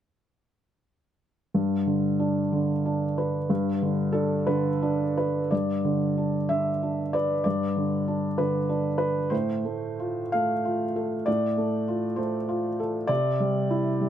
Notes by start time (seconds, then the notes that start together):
1.54 G2
1.87 D3
2.19 D4
2.52 D3
2.85 D4
3.18 B4
3.50 G2
3.82 D3
4.12 D4 A4
4.47 D3 B4
4.82 D4
5.17 B4
5.51 G2 D5
5.85 D3
6.17 D4
6.49 D3 E5
6.83 D4
7.13 B4 D5
7.44 G2 D5
7.76 D3
8.08 D4
8.38 D3 B4
8.69 D4
8.98 B4
9.30 A2 C5
9.65 A3
9.99 F4
10.32 A3 F5
10.65 F4
10.96 A4
11.26 A2 D5
11.58 A3
11.88 F4
12.16 A3 C5
12.49 F4
12.80 A4
13.07 C3 D5
13.40 G3
13.70 E4
14.01 G3